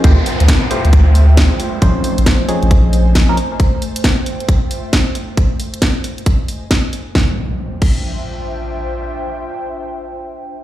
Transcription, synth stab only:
0.04 A3 E4 F4 G4 C5
0.71 A3 E4 F4 G4 C5
1.82 F3 C4 C#4 D#4 C5
2.49 F3 C4 C#4 D#4 G#4
3.29 F3 C4 C#4 D#4 A#4

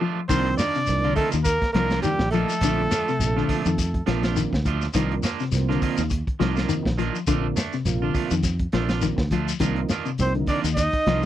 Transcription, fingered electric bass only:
0.30 C2
0.89 C2
1.34 D#2
1.75 C2
2.19 A#1
2.61 A#1
3.19 A#1
3.49 muted fingered electric bass stroke
3.66 F2
4.08 A#1
4.53 D2
4.95 C2
5.52 C2
5.98 D#2
6.41 C2
6.86 A#1
7.28 A#1
7.85 A#1
8.31 F2
8.74 A#1
9.18 D2
9.60 C2
10.19 C2
10.64 D#2
11.07 C2

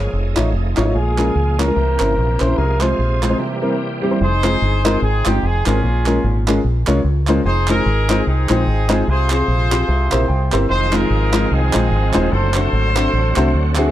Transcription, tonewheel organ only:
Already playing: F3 G#3 A#3 G#4
0.13 A3 D#4
0.95 G#3 A#3
1.76 E3 A#3 C4 G4
2.57 C3 F3 G#3 F4 G#4
3.39 E3 G3 A#3 C4 G4
10.69 D#3 F3 G#3 C4 F4
12.31 D3 F#3 A3 F#4

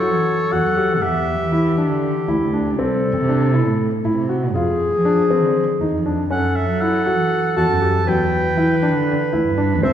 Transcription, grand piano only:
0.01 F#4
0.52 F#4
0.77 G4
1.02 F#5
1.52 E4
1.78 D4
2.28 E4
2.53 D4
2.79 C4
3.29 D4
3.54 E4
4.05 E4
4.29 F#4
4.55 F4
5.05 D4
5.30 C4
5.81 D#4
6.06 D4
6.30 C#4
6.82 E4
7.06 F#4
7.57 F#4
7.82 G4
8.07 F#3
8.57 E4
8.83 D4
9.33 E4
9.58 D4
9.83 C4

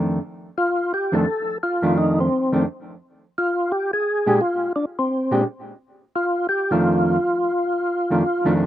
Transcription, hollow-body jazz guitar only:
Already playing: F2 D#3 A3 D4
1.12 F2 D#3 A3 D4
1.82 F2 D#3 A3 D4
2.53 F2 D#3 A3 D4
4.26 A#2 G#3 D4 G4
5.31 A#2 G#3 D4 G4
6.71 F2 D#3 A3 D4
8.10 F2 D#3 A3 D4
8.45 F2 D#3 A3 D4

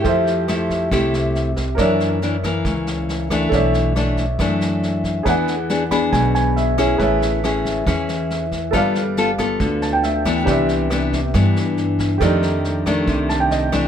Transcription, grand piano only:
0.02 G4 A4 C5
0.08 E5
1.75 A#4 C#5 D5
1.81 E5
3.49 A4 C#5
3.53 D5 E5
5.23 G#4 B4 D5
5.29 F#5
5.91 B5
6.12 G#5
6.35 G#5
6.56 E5
6.78 C#5
6.96 G#4 B4 C#5
7.02 E5
8.71 A4 B4
8.75 D5 F5
9.82 A5
9.93 G5
10.03 E5
10.44 G4 B4 D5
10.50 E5
12.18 G4 A4
12.22 D#4 D5
13.29 A5
13.40 G5
13.51 D#5

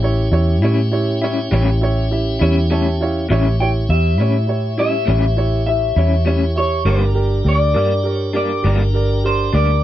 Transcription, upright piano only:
0.03 E4 G4 C#5
0.31 E4 G4 C#5
0.62 E4 G4 C#5
0.92 E4 G4 C#5
1.22 E4 G4 C#5
1.51 E4 G4 C#5
1.81 E4 G4 C#5
2.11 E4 G4 E5
2.40 E4 G4 C#5
2.71 E4 G4 C#5 A5
3.01 E4 G4 C#5 F5
3.30 E4 G4 C#5
3.60 E4 G4 C#5
3.90 E4 G4 E5
4.19 E4 G4 C#5
4.47 E4 G4 C#5
4.78 E4 G4 C#5
5.07 E4 G4 C#5
5.37 E4 G4 C#5
5.67 E4 G4 E5
5.96 E4 G4 C#5
6.25 E4 G4 C#5
6.56 E4 G4 C#5
6.85 G4 A#4 D5
7.14 G4 A#4 D5
7.44 G4 A#4 D5
7.74 G4 A#4 D5
8.03 G4 A#4 D5
8.34 G4 A#4 D5
8.63 G4 A#4 D5
8.94 G4 A#4 D5
9.24 G4 A#4 D5
9.53 G4 A#4 D5

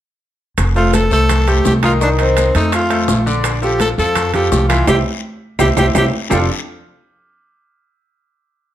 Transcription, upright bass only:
0.58 F1
1.11 C2
1.65 C2
2.55 F2
3.08 A#1
3.98 F2
4.52 C2
4.88 C2
5.59 C2
5.77 C2
5.95 C2
6.31 F1

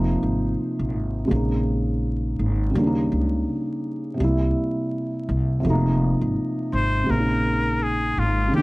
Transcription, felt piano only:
Already playing: C3 F3 A#3 D#4
1.25 C#3 G#3
1.30 A#3 C4
1.35 D#4
2.71 C#3 G3
2.77 A#3 D4
2.87 D#4
4.14 C3 G3
4.20 A#3 E4
5.60 C3 F3
5.66 A3 D#4
5.73 A#3
7.04 C#3 G#3
7.08 A#3 C4
7.13 C#4
7.20 D#4
8.48 C#3 D#3
8.55 A#3 D4

